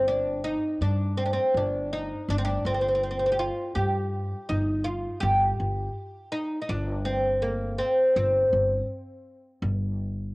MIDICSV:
0, 0, Header, 1, 3, 480
1, 0, Start_track
1, 0, Tempo, 735294
1, 1493, Time_signature, 4, 2, 24, 8
1, 6756, End_track
2, 0, Start_track
2, 0, Title_t, "Oud"
2, 0, Program_c, 0, 24
2, 51, Note_on_c, 0, 62, 82
2, 286, Note_off_c, 0, 62, 0
2, 288, Note_on_c, 0, 63, 82
2, 531, Note_off_c, 0, 63, 0
2, 534, Note_on_c, 0, 62, 84
2, 764, Note_off_c, 0, 62, 0
2, 767, Note_on_c, 0, 60, 84
2, 816, Note_off_c, 0, 60, 0
2, 821, Note_on_c, 0, 62, 65
2, 865, Note_off_c, 0, 62, 0
2, 870, Note_on_c, 0, 60, 75
2, 1019, Note_off_c, 0, 60, 0
2, 1027, Note_on_c, 0, 62, 88
2, 1257, Note_off_c, 0, 62, 0
2, 1260, Note_on_c, 0, 63, 88
2, 1500, Note_off_c, 0, 63, 0
2, 1503, Note_on_c, 0, 62, 97
2, 1545, Note_off_c, 0, 62, 0
2, 1556, Note_on_c, 0, 60, 81
2, 1594, Note_off_c, 0, 60, 0
2, 1599, Note_on_c, 0, 62, 97
2, 1737, Note_off_c, 0, 62, 0
2, 1740, Note_on_c, 0, 60, 82
2, 1785, Note_off_c, 0, 60, 0
2, 1793, Note_on_c, 0, 60, 59
2, 1829, Note_off_c, 0, 60, 0
2, 1837, Note_on_c, 0, 60, 62
2, 1876, Note_off_c, 0, 60, 0
2, 1884, Note_on_c, 0, 60, 52
2, 1918, Note_off_c, 0, 60, 0
2, 1925, Note_on_c, 0, 60, 57
2, 1973, Note_off_c, 0, 60, 0
2, 1981, Note_on_c, 0, 60, 49
2, 2021, Note_off_c, 0, 60, 0
2, 2029, Note_on_c, 0, 60, 57
2, 2076, Note_off_c, 0, 60, 0
2, 2084, Note_on_c, 0, 60, 49
2, 2120, Note_off_c, 0, 60, 0
2, 2128, Note_on_c, 0, 60, 62
2, 2163, Note_off_c, 0, 60, 0
2, 2166, Note_on_c, 0, 67, 68
2, 2211, Note_off_c, 0, 67, 0
2, 2214, Note_on_c, 0, 65, 86
2, 2446, Note_off_c, 0, 65, 0
2, 2448, Note_on_c, 0, 67, 84
2, 2930, Note_on_c, 0, 63, 84
2, 3146, Note_off_c, 0, 67, 0
2, 3161, Note_on_c, 0, 65, 89
2, 3180, Note_off_c, 0, 63, 0
2, 3394, Note_off_c, 0, 65, 0
2, 3397, Note_on_c, 0, 67, 99
2, 4123, Note_off_c, 0, 67, 0
2, 4126, Note_on_c, 0, 63, 84
2, 4312, Note_off_c, 0, 63, 0
2, 4320, Note_on_c, 0, 63, 64
2, 4369, Note_on_c, 0, 62, 93
2, 4370, Note_off_c, 0, 63, 0
2, 4604, Note_on_c, 0, 60, 80
2, 4619, Note_off_c, 0, 62, 0
2, 4845, Note_on_c, 0, 58, 79
2, 4856, Note_off_c, 0, 60, 0
2, 5081, Note_on_c, 0, 60, 87
2, 5096, Note_off_c, 0, 58, 0
2, 5320, Note_off_c, 0, 60, 0
2, 5328, Note_on_c, 0, 60, 79
2, 5782, Note_off_c, 0, 60, 0
2, 6756, End_track
3, 0, Start_track
3, 0, Title_t, "Upright bass"
3, 0, Program_c, 1, 32
3, 0, Note_on_c, 1, 31, 92
3, 348, Note_off_c, 1, 31, 0
3, 529, Note_on_c, 1, 43, 81
3, 891, Note_off_c, 1, 43, 0
3, 1008, Note_on_c, 1, 31, 85
3, 1371, Note_off_c, 1, 31, 0
3, 1492, Note_on_c, 1, 31, 92
3, 1673, Note_off_c, 1, 31, 0
3, 1730, Note_on_c, 1, 31, 90
3, 2273, Note_off_c, 1, 31, 0
3, 2454, Note_on_c, 1, 43, 81
3, 2815, Note_off_c, 1, 43, 0
3, 2934, Note_on_c, 1, 31, 87
3, 3295, Note_off_c, 1, 31, 0
3, 3413, Note_on_c, 1, 31, 100
3, 3594, Note_off_c, 1, 31, 0
3, 3654, Note_on_c, 1, 31, 85
3, 3835, Note_off_c, 1, 31, 0
3, 4367, Note_on_c, 1, 31, 94
3, 5089, Note_off_c, 1, 31, 0
3, 5326, Note_on_c, 1, 31, 94
3, 5508, Note_off_c, 1, 31, 0
3, 5565, Note_on_c, 1, 31, 90
3, 5747, Note_off_c, 1, 31, 0
3, 6281, Note_on_c, 1, 31, 99
3, 6756, Note_off_c, 1, 31, 0
3, 6756, End_track
0, 0, End_of_file